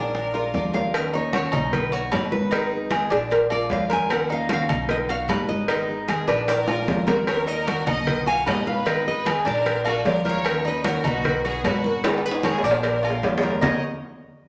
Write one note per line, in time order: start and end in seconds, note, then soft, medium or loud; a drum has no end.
0.00 0.49 A#1 medium
0.00 0.15 B3 soft
0.00 0.32 D4 medium
0.00 0.14 D#4 soft
0.00 0.14 G#4 soft
0.00 0.74 A#4 medium
0.00 0.53 D5 medium
0.14 muted steel-string acoustic guitar stroke medium
0.14 high bongo medium
0.14 high conga soft
0.34 0.54 G#3 soft
0.34 0.54 D4 soft
0.34 0.72 F4 medium
0.34 0.53 F4 soft
0.34 0.55 A#4 loud
0.34 high bongo soft
0.34 high conga soft
0.54 1.47 D#2 medium
0.54 0.93 F3 medium
0.54 0.93 G#3 medium
0.54 0.94 D4 medium
0.54 0.94 F4 loud
0.54 0.74 D5 medium
0.54 high bongo soft
0.54 low bongo medium
0.54 high conga medium
0.73 0.93 A#4 medium
0.73 0.95 F5 medium
0.73 high bongo soft
0.73 high conga medium
0.73 low timbale medium
0.94 1.13 D#3 medium
0.94 1.13 A#3 medium
0.94 1.14 C#4 medium
0.94 1.13 F#4 medium
0.94 1.15 D#5 loud
0.94 cowbell loud
0.94 high conga soft
0.94 low agogo loud
1.13 1.33 A#3 soft
1.13 1.33 C#4 soft
1.13 1.32 D#4 medium
1.13 1.33 F#4 medium
1.13 1.34 C#5 medium
1.13 high conga soft
1.33 1.52 D#3 medium
1.33 1.53 A#3 medium
1.33 1.53 C#4 medium
1.33 1.52 F#4 medium
1.33 1.74 C#5 loud
1.33 cowbell medium
1.33 high conga medium
1.33 low timbale medium
1.33 low agogo medium
1.52 2.08 B1 medium
1.52 1.73 A#3 soft
1.52 1.73 C#4 soft
1.52 1.91 D#4 medium
1.52 1.72 F#4 soft
1.52 low conga medium
1.52 low agogo loud
1.73 1.93 B4 loud
1.73 muted steel-string acoustic guitar stroke medium
1.73 cowbell medium
1.73 high conga soft
1.73 low conga medium
1.92 2.12 B3 soft
1.92 2.12 D#4 soft
1.92 2.11 F#4 medium
1.92 2.11 F#4 soft
1.92 2.32 C#5 loud
1.92 high conga soft
1.92 low agogo medium
2.11 3.06 G#1 medium
2.11 2.51 B2 medium
2.11 2.51 F#3 medium
2.11 2.51 B3 medium
2.11 2.52 D#4 medium
2.11 2.52 F#4 medium
2.11 2.50 B4 medium
2.11 cowbell medium
2.11 high conga medium
2.11 low timbale medium
2.11 low agogo loud
2.32 3.07 B4 medium
2.32 high conga medium
2.51 2.70 D#3 medium
2.51 2.71 G#3 medium
2.51 2.71 B3 medium
2.51 2.90 D#4 medium
2.51 2.70 D#4 medium
2.51 2.70 G#4 medium
2.51 cowbell loud
2.51 high conga soft
2.51 low agogo medium
2.71 2.90 B3 soft
2.71 2.90 D#4 soft
2.71 2.90 G#4 medium
2.71 high conga soft
2.90 3.10 D#3 medium
2.90 3.10 G#3 medium
2.90 3.10 B3 medium
2.90 3.10 D#4 medium
2.90 3.10 G#4 medium
2.90 3.09 G#4 medium
2.90 cowbell medium
2.90 high conga loud
2.90 low timbale medium
2.90 low agogo loud
3.10 3.67 A#1 medium
3.10 3.30 B3 soft
3.10 3.49 D4 medium
3.10 3.31 D#4 soft
3.10 3.30 G#4 soft
3.10 3.17 G#4 loud
3.10 cowbell medium
3.10 high conga soft
3.10 low agogo medium
3.30 3.52 A#4 medium
3.30 muted steel-string acoustic guitar stroke medium
3.30 cowbell medium
3.30 high conga soft
3.30 low agogo medium
3.50 3.70 G#3 soft
3.50 3.70 D4 soft
3.50 3.89 F4 medium
3.50 3.70 F4 medium
3.50 3.72 D5 loud
3.50 high conga soft
3.50 low agogo loud
3.70 4.64 D#2 medium
3.70 4.08 F3 medium
3.70 4.09 G#3 medium
3.70 4.10 D4 medium
3.70 4.10 F4 medium
3.70 3.92 F5 loud
3.70 cowbell medium
3.70 high conga medium
3.70 low timbale medium
3.90 4.29 A#4 loud
3.90 4.12 G#5 loud
3.90 cowbell medium
3.90 high conga medium
4.09 4.29 D#3 medium
4.09 4.29 A#3 medium
4.09 4.28 C#4 medium
4.09 4.27 F#4 medium
4.09 4.32 F#5 loud
4.09 cowbell loud
4.09 high conga soft
4.09 low agogo loud
4.28 4.49 A#3 soft
4.28 4.49 C#4 soft
4.28 4.49 D#4 medium
4.28 4.48 F#4 soft
4.28 4.52 F5 loud
4.28 high conga soft
4.49 4.69 D#3 medium
4.49 4.69 A#3 medium
4.49 4.69 C#4 medium
4.49 4.69 F#4 medium
4.49 4.68 F#4 medium
4.49 cowbell medium
4.49 high conga loud
4.49 low timbale medium
4.49 low agogo medium
4.53 4.90 F5 loud
4.69 5.25 B1 loud
4.69 4.89 A#3 soft
4.69 4.89 C#4 soft
4.69 5.08 D#4 medium
4.69 4.89 F#4 soft
4.69 low conga medium
4.69 low agogo loud
4.88 4.96 D#5 loud
4.88 muted steel-string acoustic guitar stroke medium
4.88 cowbell loud
4.88 high conga soft
5.08 5.27 B3 soft
5.08 5.28 D#4 soft
5.08 5.28 F#4 medium
5.08 5.29 F#4 medium
5.08 5.47 F5 loud
5.08 high conga soft
5.08 low agogo medium
5.28 6.22 G#1 medium
5.28 5.68 B2 medium
5.28 5.68 F#3 medium
5.28 5.68 B3 medium
5.28 5.68 D#4 medium
5.28 5.69 F#4 medium
5.28 5.68 B4 medium
5.28 cowbell medium
5.28 high conga medium
5.28 low timbale medium
5.28 low agogo loud
5.49 6.28 D#5 loud
5.49 high conga medium
5.68 5.88 D#3 medium
5.68 5.88 G#3 medium
5.68 5.88 B3 medium
5.68 6.07 D#4 medium
5.68 5.88 D#4 medium
5.68 5.87 G#4 medium
5.68 cowbell loud
5.68 high conga soft
5.68 low agogo medium
5.88 6.07 B3 soft
5.88 6.08 D#4 soft
5.88 6.08 G#4 medium
5.88 high conga soft
6.08 6.27 D#3 medium
6.08 6.28 G#3 medium
6.08 6.28 B3 medium
6.08 6.28 D#4 medium
6.08 6.28 G#4 medium
6.08 6.26 G#4 medium
6.08 cowbell medium
6.08 high conga medium
6.08 low timbale medium
6.08 low agogo loud
6.27 6.83 A#1 loud
6.27 6.48 B3 soft
6.27 6.67 D4 medium
6.27 6.48 D#4 soft
6.27 6.47 G#4 soft
6.27 6.49 B4 medium
6.27 cowbell medium
6.27 low agogo medium
6.47 7.08 A#4 medium
6.47 7.08 D5 medium
6.47 muted steel-string acoustic guitar stroke medium
6.47 cowbell medium
6.47 high conga soft
6.47 high timbale medium
6.47 low agogo medium
6.67 6.87 G#3 soft
6.67 6.88 D4 soft
6.67 7.06 F4 medium
6.67 6.87 F4 medium
6.67 high bongo medium
6.67 high conga soft
6.67 low agogo loud
6.88 7.81 D#2 medium
6.88 7.27 F3 medium
6.88 7.27 G#3 medium
6.88 7.28 D4 medium
6.88 7.28 F4 medium
6.88 cowbell medium
6.88 low bongo medium
6.88 high conga medium
6.88 low timbale medium
7.07 7.17 F#4 medium
7.07 7.46 A#4 loud
7.07 7.13 A#4 medium
7.07 cowbell medium
7.07 low bongo medium
7.07 high conga loud
7.07 low timbale medium
7.27 7.47 D#3 medium
7.27 7.47 A#3 medium
7.27 7.47 C#4 medium
7.27 7.45 F#4 medium
7.27 7.47 A#4 medium
7.27 7.48 C#5 loud
7.27 cowbell loud
7.27 high conga soft
7.27 low agogo loud
7.46 7.66 A#3 soft
7.46 7.66 C#4 soft
7.46 7.67 D#4 medium
7.46 7.66 F#4 soft
7.46 7.88 A#4 medium
7.46 7.86 D#5 loud
7.46 high conga soft
7.66 7.86 D#3 medium
7.66 7.86 A#3 medium
7.66 7.86 C#4 medium
7.66 7.86 F#4 medium
7.66 7.85 F#4 medium
7.66 cowbell medium
7.66 high conga medium
7.66 low timbale medium
7.66 low agogo medium
7.86 8.42 B1 loud
7.86 8.07 A#3 soft
7.86 8.06 C#4 soft
7.86 8.26 D#4 medium
7.86 8.06 F#4 medium
7.86 8.24 D#5 loud
7.86 8.24 F#5 loud
7.86 low conga medium
7.86 low agogo loud
8.07 muted steel-string acoustic guitar stroke medium
8.07 cowbell medium
8.07 high conga soft
8.07 low conga medium
8.26 8.47 B3 soft
8.26 8.46 D#4 soft
8.26 8.46 F#4 medium
8.26 8.46 F5 medium
8.26 8.47 G#5 loud
8.26 high conga soft
8.26 low agogo medium
8.46 9.40 G#1 medium
8.46 8.84 B2 medium
8.46 8.85 F#3 medium
8.46 8.85 B3 medium
8.46 8.86 D#4 medium
8.46 8.86 F#4 medium
8.46 8.85 B4 medium
8.46 8.66 D#5 medium
8.46 8.67 F#5 medium
8.46 cowbell medium
8.46 high conga medium
8.46 low timbale medium
8.46 low agogo loud
8.67 9.04 B4 medium
8.67 9.07 F5 loud
8.67 high conga medium
8.85 9.05 D#3 medium
8.85 9.05 G#3 medium
8.85 9.06 B3 medium
8.85 9.25 D#4 medium
8.85 9.06 D#4 medium
8.85 9.05 G#4 medium
8.85 cowbell loud
8.85 low agogo medium
9.06 9.25 B3 soft
9.06 9.25 D#4 soft
9.06 9.25 G#4 medium
9.06 9.44 B4 medium
9.06 9.47 D#5 loud
9.06 high conga soft
9.24 9.44 D#3 medium
9.24 9.45 G#3 medium
9.24 9.45 B3 medium
9.24 9.45 D#4 medium
9.24 9.45 G#4 medium
9.24 9.43 G#4 medium
9.24 cowbell medium
9.24 high conga loud
9.24 low timbale medium
9.24 low agogo loud
9.44 10.01 A#1 medium
9.44 9.65 B3 soft
9.44 9.84 D4 medium
9.44 9.65 D#4 soft
9.44 9.64 G#4 soft
9.44 9.83 A#4 medium
9.44 9.88 D5 loud
9.44 cowbell medium
9.44 high conga soft
9.44 low agogo medium
9.66 muted steel-string acoustic guitar stroke medium
9.66 cowbell loud
9.66 high conga soft
9.66 low agogo medium
9.84 10.05 G#3 soft
9.84 10.05 D4 soft
9.84 10.24 F4 medium
9.84 10.04 F4 medium
9.84 10.04 F#4 medium
9.84 10.07 A#4 loud
9.84 high conga soft
9.84 low agogo loud
10.05 10.99 D#2 medium
10.05 10.44 F3 medium
10.05 10.45 G#3 medium
10.05 10.45 D4 medium
10.05 10.45 F4 medium
10.05 10.24 A#4 medium
10.05 10.29 D5 medium
10.05 cowbell medium
10.05 high conga medium
10.05 low timbale loud
10.25 10.64 A#4 loud
10.25 10.65 C#5 medium
10.25 cowbell medium
10.25 high conga medium
10.29 10.67 F5 loud
10.45 10.64 D#3 medium
10.45 10.65 A#3 medium
10.45 10.64 C#4 medium
10.45 10.63 F#4 medium
10.45 cowbell loud
10.45 high conga soft
10.45 low agogo loud
10.65 10.83 A#3 soft
10.65 10.84 C#4 soft
10.65 10.84 D#4 medium
10.65 10.84 F#4 soft
10.65 10.84 B4 medium
10.65 10.87 D#5 medium
10.65 high conga soft
10.84 11.03 D#3 medium
10.84 11.04 A#3 medium
10.84 11.04 C#4 medium
10.84 11.04 F#4 medium
10.84 11.03 F#4 medium
10.84 11.05 A#4 medium
10.84 11.06 C#5 loud
10.84 cowbell medium
10.84 high conga loud
10.84 low timbale medium
10.84 low agogo medium
11.04 11.60 B1 medium
11.04 11.24 A#3 soft
11.04 11.24 C#4 soft
11.04 11.43 D#4 medium
11.04 11.24 F#4 soft
11.04 11.43 F#4 medium
11.04 11.44 B4 loud
11.04 low conga medium
11.04 low agogo loud
11.24 muted steel-string acoustic guitar stroke medium
11.24 cowbell loud
11.24 high conga soft
11.24 low conga medium
11.44 11.64 B3 soft
11.44 11.64 D#4 soft
11.44 11.64 F#4 soft
11.44 11.64 F#4 medium
11.44 11.64 G#4 medium
11.44 11.65 B4 medium
11.44 high conga soft
11.44 low agogo medium
11.64 12.58 G#1 medium
11.64 12.03 B2 medium
11.64 12.04 F#3 medium
11.64 12.04 B3 medium
11.64 12.04 D#4 medium
11.64 11.84 F#4 medium
11.64 12.05 F#4 medium
11.64 12.03 B4 medium
11.64 11.86 B4 medium
11.64 cowbell medium
11.64 high conga medium
11.64 low timbale medium
11.64 low agogo loud
11.84 12.05 F#4 medium
11.84 12.05 A#4 medium
11.84 high conga medium
12.04 12.23 D#3 medium
12.04 12.23 G#3 medium
12.04 12.23 B3 medium
12.04 12.43 D#4 medium
12.04 12.24 D#4 medium
12.04 12.23 D#4 medium
12.04 12.23 G#4 medium
12.04 12.26 G#4 medium
12.04 cowbell loud
12.04 high conga soft
12.04 high timbale loud
12.04 low agogo medium
12.18 high timbale medium
12.24 12.43 B3 soft
12.24 12.44 D#4 soft
12.24 12.43 G#4 soft
12.24 12.44 G#4 medium
12.24 12.45 B4 medium
12.24 high conga soft
12.31 high timbale medium
12.43 12.62 D#3 medium
12.43 12.63 G#3 medium
12.43 12.63 B3 medium
12.43 12.63 D#4 medium
12.43 12.63 G#4 medium
12.43 12.64 C#5 loud
12.43 cowbell medium
12.43 high conga loud
12.43 high timbale medium
12.43 low agogo loud
12.58 low timbale medium
12.63 13.19 A#1 loud
12.63 12.84 B3 soft
12.63 13.02 D4 medium
12.63 12.84 D#4 soft
12.63 12.83 G#4 soft
12.63 13.44 A#4 medium
12.63 13.43 D5 medium
12.63 cowbell medium
12.63 high conga soft
12.63 low agogo medium
12.71 low timbale loud
12.83 muted steel-string acoustic guitar stroke medium
12.83 cowbell medium
12.83 high conga soft
12.83 low timbale medium
12.83 low agogo medium
13.03 13.23 G#3 soft
13.03 13.23 D4 soft
13.03 13.42 F4 medium
13.03 13.22 F4 medium
13.03 high conga soft
13.03 low agogo loud
13.10 low timbale medium
13.23 13.58 D#2 medium
13.23 13.62 F3 medium
13.23 13.62 G#3 medium
13.23 13.62 D4 medium
13.23 13.63 F4 medium
13.23 cowbell medium
13.23 high conga medium
13.23 low timbale loud
13.38 low timbale loud
13.42 13.61 A#4 medium
13.42 cowbell medium
13.42 high conga medium
13.50 low timbale medium
13.61 13.81 D#2 loud
13.61 13.79 D#3 medium
13.61 13.79 A#3 medium
13.61 13.80 C#4 medium
13.61 13.80 D#4 medium
13.61 13.81 A#4 medium
13.61 13.81 C#5 loud
13.61 13.81 D#5 medium
13.61 13.82 F#5 medium
13.61 low bongo medium
13.61 low conga loud
13.61 low timbale loud
13.65 13.80 F#4 medium